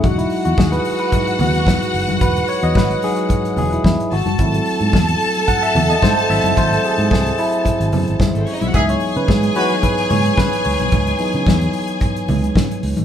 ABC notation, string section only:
X:1
M:4/4
L:1/16
Q:1/4=110
K:E
V:1 name="String section"
[Ff]16- | [Ff]12 z2 [Aa]2- | [Aa]16- | [Aa]12 z [A,A]/2 [^B,^B]/2 [Cc]/2 [Dd]/2 [Ee]/2 [Ff]/2 |
[Gg]16- | [Gg]12- [Gg]2 z2 |]